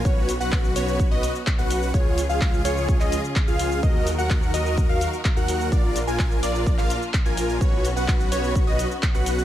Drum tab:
HH |--o---o---o---o-|--o---o---o---o-|--o---o---o---o-|--o---o---o---o-|
SH |x-xxxxxxx-xxxxxx|x-xxxxxxxxxxxxxx|x-xxxxxxx-xxxxxx|x-xxxxxxxxxxxxxx|
CP |----x-------x---|----x----x--x---|----x-------x---|----x----x--x---|
BD |o---o---o---o---|o---o---o---o---|o---o---o---o---|o---o---o---o---|

HH |--o---o---o---o-|
SH |x-xxxxxxx-xxxxxx|
CP |----x-------x---|
BD |o---o---o---o---|